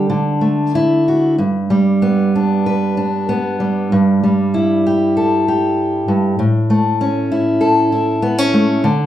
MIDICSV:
0, 0, Header, 1, 2, 480
1, 0, Start_track
1, 0, Tempo, 634249
1, 1042, Time_signature, 4, 2, 24, 8
1, 3432, Tempo, 616650
1, 6954, End_track
2, 0, Start_track
2, 0, Title_t, "Steel-string acoustic guitar"
2, 0, Program_c, 0, 25
2, 0, Note_on_c, 0, 62, 49
2, 73, Note_on_c, 0, 50, 57
2, 312, Note_on_c, 0, 57, 51
2, 566, Note_off_c, 0, 62, 0
2, 569, Note_on_c, 0, 64, 50
2, 818, Note_on_c, 0, 66, 44
2, 1012, Note_off_c, 0, 57, 0
2, 1019, Note_off_c, 0, 64, 0
2, 1021, Note_off_c, 0, 66, 0
2, 1042, Note_off_c, 0, 50, 0
2, 1048, Note_on_c, 0, 43, 54
2, 1288, Note_on_c, 0, 55, 50
2, 1529, Note_on_c, 0, 59, 45
2, 1782, Note_on_c, 0, 62, 45
2, 2015, Note_on_c, 0, 71, 48
2, 2240, Note_off_c, 0, 62, 0
2, 2249, Note_on_c, 0, 62, 45
2, 2480, Note_off_c, 0, 59, 0
2, 2489, Note_on_c, 0, 59, 50
2, 2715, Note_off_c, 0, 55, 0
2, 2724, Note_on_c, 0, 55, 49
2, 2933, Note_off_c, 0, 71, 0
2, 2958, Note_off_c, 0, 43, 0
2, 2960, Note_off_c, 0, 59, 0
2, 2968, Note_on_c, 0, 43, 59
2, 3196, Note_off_c, 0, 55, 0
2, 3205, Note_on_c, 0, 55, 53
2, 3437, Note_on_c, 0, 64, 43
2, 3679, Note_off_c, 0, 62, 0
2, 3689, Note_on_c, 0, 67, 48
2, 3925, Note_on_c, 0, 69, 49
2, 4161, Note_off_c, 0, 67, 0
2, 4170, Note_on_c, 0, 67, 50
2, 4627, Note_off_c, 0, 43, 0
2, 4637, Note_on_c, 0, 43, 49
2, 4846, Note_off_c, 0, 64, 0
2, 4847, Note_off_c, 0, 69, 0
2, 4850, Note_off_c, 0, 67, 0
2, 4872, Note_off_c, 0, 43, 0
2, 4875, Note_on_c, 0, 45, 63
2, 4878, Note_off_c, 0, 55, 0
2, 5117, Note_on_c, 0, 57, 56
2, 5358, Note_on_c, 0, 61, 46
2, 5597, Note_on_c, 0, 64, 52
2, 5824, Note_on_c, 0, 69, 56
2, 6060, Note_off_c, 0, 64, 0
2, 6070, Note_on_c, 0, 64, 50
2, 6300, Note_off_c, 0, 61, 0
2, 6304, Note_on_c, 0, 59, 50
2, 6428, Note_off_c, 0, 59, 0
2, 6428, Note_on_c, 0, 61, 43
2, 6539, Note_off_c, 0, 57, 0
2, 6548, Note_on_c, 0, 57, 56
2, 6760, Note_off_c, 0, 69, 0
2, 6761, Note_off_c, 0, 45, 0
2, 6761, Note_off_c, 0, 57, 0
2, 6764, Note_off_c, 0, 64, 0
2, 6782, Note_on_c, 0, 50, 66
2, 6792, Note_off_c, 0, 61, 0
2, 6954, Note_off_c, 0, 50, 0
2, 6954, End_track
0, 0, End_of_file